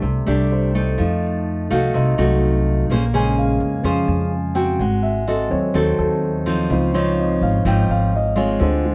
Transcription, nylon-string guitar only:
0.02 0.96 C3 soft
0.26 0.71 A3 medium
0.26 0.71 D4 medium
0.26 0.71 G4 medium
0.75 1.66 A3 medium
0.75 1.67 D#4 medium
0.98 1.91 F3 soft
1.71 2.14 A3 soft
1.71 2.14 D#4 medium
1.71 2.15 F#4 medium
1.94 2.87 C3 medium
2.18 2.86 A3 medium
2.18 2.86 D#4 medium
2.18 2.86 F#4 medium
2.91 3.83 A#3 soft
2.91 3.04 C#4 soft
2.91 3.05 G#4 medium
2.91 3.04 C5 medium
3.14 3.81 C#4 medium
3.14 3.81 G#4 medium
3.14 3.81 C5 medium
3.84 4.77 F3 medium
3.84 4.32 C#4 medium
3.84 4.32 G#4 soft
3.84 4.32 C5 medium
4.55 5.23 C4 medium
4.55 5.23 F#4 medium
4.81 5.73 G#3 medium
5.28 5.58 C4 medium
5.28 5.58 F#4 soft
5.28 5.58 A4 medium
5.74 6.67 D#3 soft
5.74 6.22 C4 soft
5.74 6.22 F#4 soft
5.74 6.22 A4 medium
6.46 6.90 F3 medium
6.46 6.90 C4 medium
6.46 6.90 D#4 medium
6.70 7.63 C#3 soft
6.94 7.62 F3 soft
6.94 7.62 C4 medium
6.94 7.62 D#4 medium
7.65 8.58 G#2 soft
7.65 8.13 F3 soft
7.65 8.13 C4 medium
7.65 8.13 D#4 medium
8.36 8.95 G#3 medium
8.36 8.95 C4 medium
8.36 8.95 F4 medium
8.60 8.95 D3 soft

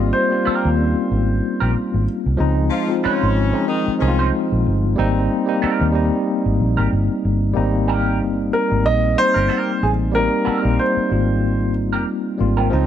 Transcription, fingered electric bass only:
0.00 0.11 G#1 loud
0.47 muted fingered electric bass stroke soft
0.65 0.93 D#2 medium
1.11 1.40 G#1 medium
1.62 1.74 A#1 medium
1.76 muted fingered electric bass stroke soft
1.94 2.06 G#1 medium
2.26 2.38 C2 medium
2.40 2.69 C#2 medium
3.05 muted fingered electric bass stroke soft
3.23 3.51 G#1 medium
3.88 muted fingered electric bass stroke soft
4.02 4.30 C2 medium
4.52 4.64 A#1 medium
4.67 4.95 G1 medium
4.99 5.27 G#1 medium
5.63 muted fingered electric bass stroke soft
5.81 6.09 D#2 medium
6.46 6.58 G#1 medium
6.60 6.75 A#1 medium
6.78 6.90 G#1 medium
6.92 7.07 G1 medium
7.25 7.53 G1 medium
7.57 8.22 G#1 medium
8.22 8.49 G1 medium
8.72 8.86 G#1 medium
8.86 9.14 A#1 medium
9.36 9.48 G1 medium
9.83 10.27 A1 medium
10.47 muted fingered electric bass stroke soft
10.65 10.77 A#1 medium
10.97 muted fingered electric bass stroke soft
11.12 12.03 G#1 medium
12.41 12.69 G#1 loud
12.73 12.87 C#2 medium

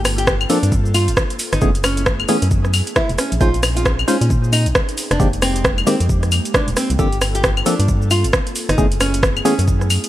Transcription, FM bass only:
0.00 0.46 G1 loud
0.63 1.09 G2 medium
1.08 1.15 G1 medium
1.53 1.59 G1 medium
1.62 2.25 F#1 medium
2.42 2.82 F#2 medium
3.09 3.16 E1 medium
3.32 3.39 A#1 medium
3.41 4.04 A#1 loud
4.21 4.68 A#2 medium
4.66 4.73 A#1 medium
5.11 5.18 F1 medium
5.20 5.84 F1 loud
6.00 6.40 F2 medium
6.68 6.74 D#1 medium
6.90 6.97 C2 medium
6.99 7.63 G1 loud
7.79 8.26 G2 medium
8.24 8.31 G1 medium
8.69 8.76 G1 medium
8.78 9.42 F#1 loud
9.59 9.98 F#2 medium

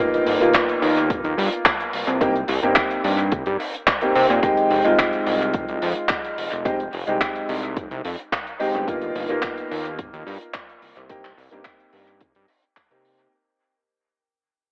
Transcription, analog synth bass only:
0.00 0.22 G1 medium
0.27 0.38 G1 loud
0.41 0.52 D#2 medium
0.82 1.12 D#2 medium
1.10 1.22 G1 medium
1.24 1.35 D#2 loud
1.38 1.49 G2 loud
1.93 2.05 C2 soft
2.07 2.44 C2 medium
2.49 2.60 C2 loud
2.63 2.74 G2 medium
3.04 3.34 G2 medium
3.32 3.44 C2 medium
3.47 3.57 G2 medium
4.16 4.27 C3 loud
4.30 4.40 A#2 loud
4.71 4.82 F1 medium
4.85 4.96 C2 medium
5.27 5.56 C2 medium
5.54 5.66 F1 medium
5.69 5.80 C2 medium
5.82 5.94 F2 loud
6.38 6.49 F1 soft
6.53 6.89 F1 medium
6.94 7.05 F1 medium
7.08 7.19 C2 medium
7.49 7.78 C2 loud
7.77 7.88 F1 medium
7.91 8.02 C2 loud
8.05 8.16 F2 loud
8.60 8.72 G1 soft
8.75 9.11 G1 medium
9.15 9.27 G1 loud
9.30 9.41 D#2 medium
9.71 10.01 D#2 medium
9.99 10.10 G1 medium
10.13 10.24 D#2 loud
10.27 10.38 G2 loud
10.82 10.94 C2 soft
10.97 11.33 C2 medium
11.38 11.49 C2 loud
11.52 11.63 G2 medium
11.93 12.23 G2 medium
12.21 12.33 C2 medium
12.36 12.46 G2 medium
12.91 13.28 C3 medium

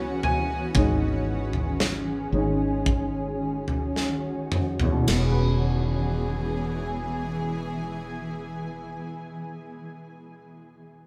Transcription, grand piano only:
0.00 0.77 F#5 loud
0.00 0.24 G#5 medium
0.24 3.91 G#5 loud
0.76 1.45 G#3 medium
0.76 1.45 C#4 medium
0.76 1.45 D#4 medium
2.34 2.83 G#3 soft
2.34 2.83 C#4 soft
2.34 2.83 D#4 medium
4.82 8.72 E2 medium
4.92 8.81 B2 medium
5.02 8.92 E3 soft
5.12 9.02 B3 medium
5.22 9.12 G#4 medium
5.32 9.21 B4 medium

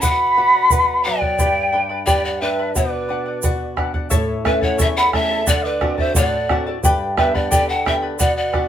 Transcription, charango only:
0.03 0.36 B4 medium
0.03 0.37 D5 medium
0.03 0.37 F#5 medium
0.37 0.54 B4 medium
0.37 0.54 D5 medium
0.37 0.53 F#5 medium
0.54 0.70 D5 soft
0.54 0.71 F#5 medium
0.71 1.04 B4 medium
0.71 1.04 D5 medium
0.71 1.05 F#5 medium
1.05 1.22 B4 medium
1.05 1.22 D5 medium
1.05 1.20 F#5 medium
1.21 1.38 D5 soft
1.21 1.38 F#5 soft
1.38 1.73 G4 medium
1.38 1.72 B4 medium
1.38 1.72 D5 medium
1.38 1.71 G5 medium
1.38 1.73 B5 medium
1.72 1.90 B4 medium
1.72 1.89 D5 medium
1.72 1.90 G5 medium
1.72 1.88 B5 medium
1.89 2.06 B4 soft
1.89 2.06 D5 soft
1.89 2.06 B5 medium
2.06 2.41 G4 medium
2.06 2.41 B4 medium
2.06 2.41 D5 medium
2.06 2.41 G5 medium
2.06 2.41 B5 medium
2.42 2.59 B4 medium
2.42 2.58 D5 medium
2.42 2.59 G5 medium
2.42 2.58 B5 medium
2.59 2.74 B4 soft
2.59 2.75 D5 soft
2.59 2.76 B5 medium
2.75 3.07 B4 medium
2.75 3.08 D5 medium
2.75 3.09 F#5 medium
3.09 3.26 B4 medium
3.09 3.26 D5 medium
3.09 3.25 F#5 medium
3.26 3.43 D5 soft
3.26 3.43 F#5 medium
3.44 3.75 B4 medium
3.44 3.76 D5 medium
3.44 3.77 F#5 medium
3.77 3.94 B4 medium
3.77 3.94 D5 medium
3.77 3.93 F#5 medium
3.94 4.10 D5 soft
3.94 4.10 F#5 medium
4.10 4.44 E4 medium
4.10 4.45 A4 loud
4.10 4.45 C#5 medium
4.10 4.44 E5 medium
4.10 4.45 A5 loud
4.45 4.62 E4 medium
4.45 4.61 A4 medium
4.45 4.62 E5 medium
4.45 4.60 A5 medium
4.61 4.78 E4 medium
4.61 4.78 A4 soft
4.61 4.78 A5 medium
4.78 5.12 E4 medium
4.78 5.13 A4 medium
4.78 5.13 C#5 medium
4.78 5.11 E5 medium
4.78 5.12 A5 medium
5.12 5.30 E4 medium
5.12 5.30 A4 medium
5.12 5.30 E5 medium
5.12 5.30 A5 medium
5.31 5.47 E4 soft
5.31 5.46 A4 soft
5.31 5.46 A5 medium
5.47 5.80 A4 medium
5.47 5.81 C5 medium
5.47 5.81 D5 medium
5.47 5.80 F#5 medium
5.47 5.81 A5 medium
5.81 5.98 A4 medium
5.81 5.97 D5 medium
5.81 5.98 F#5 medium
5.81 5.96 A5 medium
5.98 6.15 A4 medium
5.98 6.15 D5 medium
5.98 6.15 A5 medium
6.15 6.49 A4 medium
6.15 6.50 C5 medium
6.15 6.49 D5 loud
6.15 6.49 F#5 medium
6.15 6.50 A5 loud
6.50 6.67 A4 medium
6.50 6.66 D5 medium
6.50 6.67 F#5 medium
6.50 6.65 A5 medium
6.67 6.84 A4 medium
6.67 6.84 D5 medium
6.67 6.84 A5 medium
6.84 7.18 G4 medium
6.84 7.16 B4 medium
6.84 7.17 D5 loud
6.84 7.16 G5 loud
6.84 7.17 B5 medium
7.17 7.35 B4 medium
7.17 7.34 D5 medium
7.17 7.34 G5 medium
7.17 7.33 B5 medium
7.35 7.50 B4 medium
7.35 7.50 D5 medium
7.35 7.51 B5 medium
7.51 7.85 G4 medium
7.51 7.85 B4 medium
7.51 7.85 D5 medium
7.51 7.84 G5 medium
7.51 7.85 B5 medium
7.85 8.02 B4 medium
7.85 8.02 D5 medium
7.85 8.02 G5 medium
7.85 8.01 B5 medium
8.02 8.18 B4 soft
8.02 8.18 D5 medium
8.02 8.19 B5 medium
8.19 8.51 B4 medium
8.19 8.52 D5 medium
8.19 8.53 F#5 medium
8.53 8.68 B4 medium
8.53 8.68 D5 medium
8.53 8.68 F#5 medium

